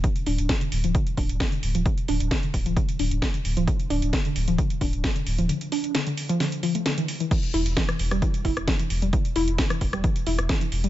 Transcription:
<<
  \new Staff \with { instrumentName = "Synth arpeggio sound" } { \clef bass \time 4/4 \key d \mixolydian \tempo 4 = 132 d16 r16 d'16 r16 d16 d16 r16 f16 d16 r16 d'16 r16 d16 d16 r16 f16 | d16 r16 d'16 r16 d16 d16 r16 f16 d16 r16 d'16 r16 d16 d16 r16 f16 | d16 r16 d'16 r16 d16 d16 r16 f16 d16 r16 d'16 r16 d16 d16 r16 f16 | d16 r16 d'16 r16 d16 d16 r16 f16 d16 r16 f16 a16 d16 e16 r16 e16 |
e16 r16 e'16 r16 e16 e16 r16 g16 e16 r16 e'16 r16 e16 e16 r16 g16 | e16 r16 e'16 r16 e16 e16 r16 g16 e16 r16 e'16 r16 e16 e16 r16 g16 | }
  \new Staff \with { instrumentName = "Sub bass" } { \clef bass \time 4/4 \key d \mixolydian r8 d,,16 d,,16 r8 d,,16 d,,16 r8 d,,16 d,,16 r8 d,,16 d,,16 | r8 d,,16 d,,16 r8 d,,16 d,,16 r8 d,,16 d,,16 r8 d,,16 d,,16 | r8 d,,16 d,,16 r8 d,,16 d,,16 r8 d,,16 d,,16 r8 d,,16 d,,16 | r1 |
r8 e,,16 e,,16 r8 e,,16 e,,16 r8 e,,16 e,,16 r8 e,,16 e,,16 | r8 e,,16 e,,16 r8 e,,16 e,,16 r8 e,,16 e,,16 r8 e,,16 e,,16 | }
  \new DrumStaff \with { instrumentName = "Drums" } \drummode { \time 4/4 <hh bd>16 hh16 hho16 hh16 <hh bd sn>16 hh16 hho16 hh16 <hh bd>16 hh16 <hho bd>16 hh16 <hh bd sn>16 hh16 hho16 hh16 | <hh bd>16 hh16 hho16 hh16 <hh bd sn>16 hh16 <hho bd>16 hh16 <hh bd>16 hh16 hho16 hh16 <hh bd sn>16 hh16 hho16 hh16 | <hh bd>16 hh16 hho16 hh16 <hh bd sn>16 hh16 hho16 hh16 <hh bd>16 hh16 <hho bd>16 hh16 <hh bd sn>16 hh16 hho16 hh16 | hh16 hh16 hho16 hh16 <hh sn>16 hh16 hho16 hh16 <hho sn>16 hh16 hho16 hh16 <hh sn>16 hh16 hho16 hh16 |
<cymc hh bd>16 hh16 hho16 hh16 <hh bd sn>16 <hh ss>16 hho16 <hh ss>16 <hh bd>16 hh16 <hho bd>16 <hh ss>16 <hh bd sn>16 hh16 hho16 hh16 | <hh bd>16 hh16 hho16 hh16 <hh bd sn>16 <hh ss>16 <hho bd>16 <hh ss>16 <hh bd>16 hh16 hho16 <hh ss>16 <hh bd sn>16 hh16 hho16 hh16 | }
>>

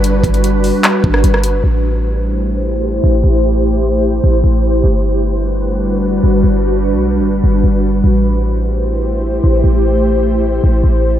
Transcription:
<<
  \new Staff \with { instrumentName = "Ambient pad" } { \time 4/4 \key a \dorian \tempo 4 = 150 <g d' fis' b'>1 | <a e' g' c''>1~ | <a e' g' c''>1 | <g d' fis' b'>1~ |
<g d' fis' b'>1 | <a e' g' c''>1~ | <a e' g' c''>1 | }
  \new Staff \with { instrumentName = "808-style bass" } { \clef bass \time 4/4 \key a \dorian g,,8 g,,4~ g,,16 r8. g,,8 g,,4 | a,,2.~ a,,8 a,,8 | a,,2~ a,,8 a,,8 a,,4 | g,,2.~ g,,8 g,,8 |
g,,4~ g,,16 b,,8~ b,,32 g,,8~ g,,32 g,,8 g,,4 | a,,2.~ a,,8 a,,8 | a,,2~ a,,8 a,,8 a,,4 | }
  \new DrumStaff \with { instrumentName = "Drums" } \drummode { \time 4/4 hh8 <hh bd>16 hh16 hh8 hho8 <hc hh>8 bd16 ss16 hh16 ss16 hh8 | r4 r4 r4 r4 | r4 r4 r4 r4 | r4 r4 r4 r4 |
r4 r4 r4 r4 | r4 r4 r4 r4 | r4 r4 r4 r4 | }
>>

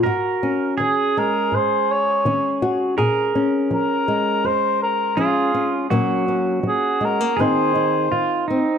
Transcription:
<<
  \new Staff \with { instrumentName = "Cor anglais" } { \time 4/4 \key aes \mixolydian \tempo 4 = 82 r4 aes'8 bes'8 c''8 des''4 r8 | r4 bes'4 c''8 bes'8 aes'8. r16 | r4 aes'8 bes'8 c''4. r8 | }
  \new Staff \with { instrumentName = "Pedal steel guitar" } { \time 4/4 \key aes \mixolydian bes'4 aes'2. | bes'2. f'4 | ges'2 aes'4 f'8 ees'8 | }
  \new Staff \with { instrumentName = "Nylon-string guitar" } { \clef bass \time 4/4 \key aes \mixolydian << { ges'8 des'4 aes4. des'8 ges'8 | aes'8 des'4 aes4. des'8 des'8 | <ges bes des'>8 des'4 aes16 bes16 <ees c' ees'>8 ees'4 c'8 | } \\ { aes,4 ees4 aes,4 ees4 | bes,4 f4 f,4 f4 | bes,4 ges4 aes,4 ees4 | } >> }
>>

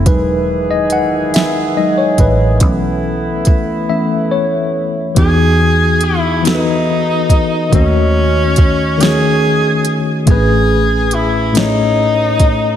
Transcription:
<<
  \new Staff \with { instrumentName = "Tenor saxophone" } { \time 6/8 \key e \major \tempo 4. = 47 r2. | r2. | gis'4 e'8 dis'4. | cis'4. gis'4 r8 |
gis'4 e'8 dis'4. | }
  \new Staff \with { instrumentName = "Tine electric piano" } { \time 6/8 \key e \major b'8. dis''16 fis''8 e''8 dis''16 cis''16 b'8~ | b'4 r8 e''8 cis''4 | <e b dis' fis' gis'>4 r8 <e b dis' fis' a' b'>4 r8 | <dis a cis' fis' dis''>4 r8 <dis a cis' fis' cis''>4 r8 |
<a, a c' cis' gis' b'>4 r8 <a, a cis' gis' cis''>4 r8 | }
  \new Staff \with { instrumentName = "Tine electric piano" } { \clef bass \time 6/8 \key e \major <fis gis dis'>4. r8 <fis gis dis'>8 r8 | <e a cis'>4. <e a cis'>8 r4 | r2. | r2. |
r2. | }
  \new Staff \with { instrumentName = "Brass ensemble" } { \time 6/8 \key e \major <dis e gis'>2. | <a b e'>2. | r2. | r2. |
r2. | }
  \new Staff \with { instrumentName = "Fingered electric bass" } { \clef bass \time 6/8 \key e \major e,,2~ e,,8 a,,8 | b,,4 cis,8 r4. | e,2. | dis,2. |
a,,2. | }
  \new DrumStaff \with { instrumentName = "Drums" } \drummode { \time 6/8 <hh bd>4 hh8 <hh sn>4 <hh bd>8 | <hh bd>4 <hh bd>8 r4. | <hh bd>4 hh8 <hh sn>4 <hh bd>8 | <hh bd>4 <hh bd>8 <hh sn>4 hh8 |
<hh bd>4 hh8 <hh sn>4 <hh bd>8 | }
>>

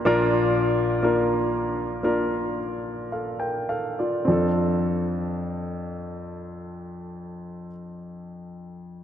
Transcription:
<<
  \new Staff \with { instrumentName = "Grand piano" } { \time 4/4 \key f \major \tempo 4 = 50 << { r2. <a' f''>16 <bes' g''>16 <a' f''>16 <f' d''>16~ | <f' d''>16 r2. r8. | } \\ { <bes d' f' bes'>4 <bes d' f' bes'>4 <bes d' f' bes'>4 r4 | <c' d' f' a'>1 | } >> }
  \new Staff \with { instrumentName = "Grand piano" } { \clef bass \time 4/4 \key f \major <bes,, bes,>1 | f,1 | }
>>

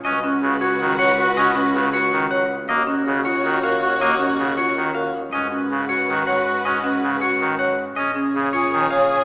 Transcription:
<<
  \new Staff \with { instrumentName = "Clean electric guitar" } { \time 7/8 \key gis \dorian \tempo 4 = 159 dis''8 r4 cis''8 r8 fis''8 r8 | dis''8 r4 cis''8 r8 fis''8 r8 | dis''8 r4 cis''8 r8 eis''8 r8 | dis''8 r4 cis''8 r8 eis''8 r8 |
dis''8 r4 cis''8 r8 fis''8 r8 | dis''8 r4 cis''8 r8 fis''8 r8 | dis''8 r4 cis''8 r8 eis''8 r8 | }
  \new Staff \with { instrumentName = "String section" } { \time 7/8 \key gis \dorian <fis' b'>2.~ <fis' b'>8~ | <fis' b'>2. r8 | <fis' cis''>2.~ <fis' cis''>8~ | <fis' cis''>2. r8 |
<fis' b'>2.~ <fis' b'>8~ | <fis' b'>2. r8 | <gis' cis''>2.~ <gis' cis''>8 | }
  \new Staff \with { instrumentName = "Marimba" } { \time 7/8 \key gis \dorian r8 cis'8 r8 fis'8 r8 cis''8 r8 | r8 cis'8 r8 fis'8 r8 cis''8 r8 | r8 cis'8 r8 eis'8 r8 ais'8 r8 | r8 cis'8 r8 eis'8 r8 ais'8 r8 |
r8 cis'8 r8 fis'8 r8 cis''8 r8 | r8 cis'8 r8 fis'8 r8 cis''8 r8 | r8 cis'8 r8 eis'8 r8 cis''8 r8 | }
  \new Staff \with { instrumentName = "Oboe" } { \time 7/8 \key gis \dorian fis'8 fis'8 fis'8 fis'8 fis'8 fis'8 fis'8 | fis'8 fis'8 fis'8 fis'8 fis'8 fis'8 r8 | fis'8 fis'8 fis'8 fis'8 fis'8 fis'8 fis'8 | fis'8 fis'8 fis'8 fis'8 fis'8 fis'8 r8 |
fis'8 fis'8 fis'8 fis'8 fis'8 fis'8 fis'8 | fis'8 fis'8 fis'8 fis'8 fis'8 fis'8 r8 | gis'8 gis'8 gis'8 gis'8 gis'8 gis'8 gis'8 | }
  \new Staff \with { instrumentName = "Pipe organ" } { \clef bass \time 7/8 \key gis \dorian cis'8 r8 cis8 r8 dis8 r4 | cis'8 r8 cis8 r8 dis8 r4 | ais8 r8 cis8 r8 dis8 r4 | ais8 r8 cis8 r8 dis8 r4 |
cis'8 r8 cis8 r8 dis8 r4 | cis'8 r8 cis8 r8 dis8 r4 | cis'8 r8 cis8 r8 dis8 r4 | }
  \new Staff \with { instrumentName = "Double bass" } { \clef bass \time 7/8 \key gis \dorian cis,2.~ cis,8~ | cis,2.~ cis,8 | dis,2.~ dis,8~ | dis,2.~ dis,8 |
gis,2.~ gis,8~ | gis,2.~ gis,8 | ais,,2.~ ais,,8 | }
>>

